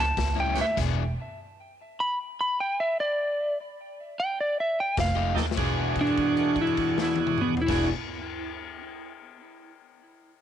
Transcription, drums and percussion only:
0.17 kick medium
0.17 snare loud
0.17 closed hi-hat medium
0.55 snare soft
0.55 closed hi-hat medium
0.77 kick medium
0.77 snare soft
0.77 closed hi-hat medium
0.77 crash medium
4.97 kick medium
4.97 snare loud
4.97 closed hi-hat medium
5.37 snare medium
5.51 snare medium
5.57 kick medium
5.57 crash medium
5.96 kick medium
5.96 crash soft
6.07 crash soft
6.17 kick medium
6.17 crash soft
6.37 crash soft
6.56 kick medium
6.56 crash soft
6.67 crash soft
6.77 kick medium
6.77 crash soft
6.98 snare medium
7.16 high tom medium
7.27 mid tom medium
7.38 mid tom medium
7.57 floor tom medium
7.68 kick loud
7.68 snare medium
7.68 crash loud

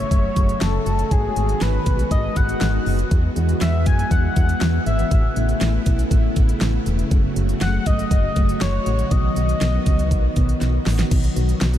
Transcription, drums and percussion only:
0.11 kick loud
0.11 closed hi-hat medium
0.36 kick medium
0.36 closed hi-hat medium
0.49 closed hi-hat medium
0.61 snare loud
0.61 closed hi-hat medium
0.86 closed hi-hat medium
0.99 closed hi-hat medium
1.11 kick loud
1.11 closed hi-hat medium
1.36 closed hi-hat medium
1.49 closed hi-hat medium
1.61 snare loud
1.61 closed hi-hat medium
1.86 kick medium
1.86 closed hi-hat medium
1.99 closed hi-hat medium
2.11 kick loud
2.11 closed hi-hat medium
2.36 kick medium
2.36 closed hi-hat medium
2.49 closed hi-hat medium
2.61 snare loud
2.61 closed hi-hat medium
2.86 open hi-hat medium
2.99 closed hi-hat medium
3.11 kick loud
3.11 closed hi-hat medium
3.36 closed hi-hat medium
3.49 closed hi-hat soft
3.61 snare loud
3.61 closed hi-hat medium
3.86 kick medium
3.86 closed hi-hat medium
3.99 closed hi-hat medium
4.11 kick loud
4.11 closed hi-hat medium
4.36 kick medium
4.36 closed hi-hat medium
4.49 closed hi-hat medium
4.61 snare loud
4.61 closed hi-hat medium
4.86 closed hi-hat medium
4.99 closed hi-hat medium
5.11 kick loud
5.11 closed hi-hat medium
5.36 closed hi-hat medium
5.49 closed hi-hat medium
5.61 snare loud
5.61 closed hi-hat medium
5.86 kick medium
5.86 closed hi-hat medium
5.99 closed hi-hat medium
6.11 kick loud
6.11 closed hi-hat medium
6.36 kick medium
6.36 closed hi-hat medium
6.49 closed hi-hat medium
6.61 snare loud
6.61 closed hi-hat medium
6.86 closed hi-hat medium
6.99 closed hi-hat soft
7.11 kick loud
7.11 closed hi-hat medium
7.36 closed hi-hat medium
7.49 closed hi-hat soft
7.61 snare loud
7.61 closed hi-hat medium
7.86 kick medium
7.86 closed hi-hat medium
7.99 closed hi-hat medium
8.11 kick loud
8.11 closed hi-hat medium
8.36 kick medium
8.36 closed hi-hat medium
8.49 closed hi-hat medium
8.61 snare loud
8.61 closed hi-hat medium
8.86 closed hi-hat medium
8.99 closed hi-hat medium
9.11 kick loud
9.11 closed hi-hat medium
9.36 closed hi-hat medium
9.49 closed hi-hat medium
9.61 snare loud
9.61 closed hi-hat medium
9.86 kick medium
9.86 closed hi-hat medium
9.99 closed hi-hat medium
10.11 kick loud
10.11 closed hi-hat medium
10.36 kick medium
10.36 closed hi-hat medium
10.49 closed hi-hat medium
10.61 snare medium
10.61 closed hi-hat medium
10.86 snare medium
10.86 open hi-hat medium
10.99 snare medium
10.99 closed hi-hat medium
11.11 kick loud
11.11 closed hi-hat medium
11.11 crash loud
11.24 closed hi-hat medium
11.36 closed hi-hat medium
11.49 closed hi-hat medium
11.61 snare loud
11.61 closed hi-hat medium
11.74 closed hi-hat medium

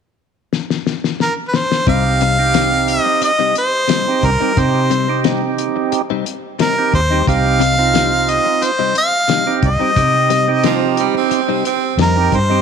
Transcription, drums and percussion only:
0.53 snare medium
0.70 snare medium
0.87 snare medium
1.04 snare medium
1.20 snare medium
1.54 snare medium
1.72 snare medium
1.87 kick loud
1.87 closed hi-hat medium
2.21 closed hi-hat medium
2.54 snare loud
2.54 closed hi-hat medium
2.88 closed hi-hat medium
3.22 closed hi-hat medium
3.55 closed hi-hat medium
3.89 snare medium
3.89 closed hi-hat medium
4.23 kick medium
4.23 closed hi-hat medium
4.57 kick loud
4.57 closed hi-hat medium
4.91 closed hi-hat medium
5.24 snare medium
5.24 closed hi-hat medium
5.58 closed hi-hat medium
5.92 closed hi-hat medium
6.26 closed hi-hat medium
6.59 snare loud
6.59 closed hi-hat medium
6.94 kick medium
6.94 closed hi-hat medium
7.27 kick loud
7.27 closed hi-hat medium
7.61 closed hi-hat medium
7.95 snare medium
7.95 closed hi-hat medium
8.29 closed hi-hat medium
8.62 closed hi-hat medium
8.95 closed hi-hat medium
9.29 snare medium
9.29 closed hi-hat medium
9.63 kick medium
9.63 closed hi-hat medium
9.96 kick loud
9.96 closed hi-hat medium
10.30 closed hi-hat medium
10.64 snare loud
10.64 closed hi-hat medium
10.97 closed hi-hat medium
11.31 closed hi-hat medium
11.65 closed hi-hat medium
11.99 snare medium
11.99 closed hi-hat medium
12.32 kick medium
12.32 closed hi-hat medium

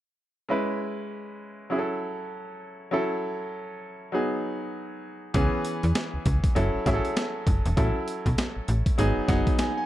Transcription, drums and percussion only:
5.34 kick loud
5.34 closed hi-hat medium
5.65 closed hi-hat medium
5.83 closed hi-hat soft
5.95 snare loud
5.95 closed hi-hat medium
6.26 kick medium
6.26 closed hi-hat medium
6.44 kick medium
6.44 closed hi-hat medium
6.56 closed hi-hat medium
6.86 kick medium
6.86 snare medium
6.86 closed hi-hat medium
7.05 closed hi-hat soft
7.17 snare loud
7.17 closed hi-hat medium
7.47 kick loud
7.47 closed hi-hat medium
7.66 closed hi-hat medium
7.77 kick loud
7.77 closed hi-hat medium
8.08 closed hi-hat medium
8.26 kick medium
8.26 closed hi-hat medium
8.38 snare loud
8.38 closed hi-hat medium
8.68 closed hi-hat medium
8.86 kick medium
8.86 closed hi-hat medium
8.99 closed hi-hat medium
9.29 kick medium
9.29 snare medium
9.29 closed hi-hat medium
9.47 kick loud
9.47 closed hi-hat soft
9.59 snare loud
9.59 closed hi-hat medium

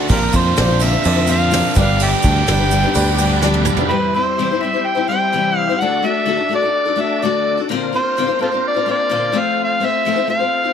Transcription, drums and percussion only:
0.08 kick loud
0.08 ride loud
0.08 shaker medium
0.33 kick medium
0.33 ride medium
0.33 shaker loud
0.57 snare loud
0.57 ride medium
0.57 shaker medium
0.80 ride medium
0.80 shaker loud
0.92 shaker soft
1.04 ride loud
1.04 shaker medium
1.27 ride medium
1.27 shaker loud
1.40 shaker soft
1.51 snare loud
1.51 ride loud
1.51 shaker medium
1.75 kick loud
1.75 ride medium
1.75 shaker medium
1.99 ride loud
1.99 shaker medium
2.22 kick medium
2.22 ride medium
2.22 shaker loud
2.35 shaker soft
2.47 snare loud
2.47 ride medium
2.47 shaker medium
2.71 ride medium
2.71 shaker loud
2.83 shaker soft
2.94 ride loud
2.94 shaker medium
3.18 ride medium
3.18 shaker loud
3.31 shaker soft
3.42 snare medium
3.42 shaker medium
3.54 high tom medium
3.65 mid tom medium
3.65 shaker medium
3.77 floor tom medium
3.77 shaker soft

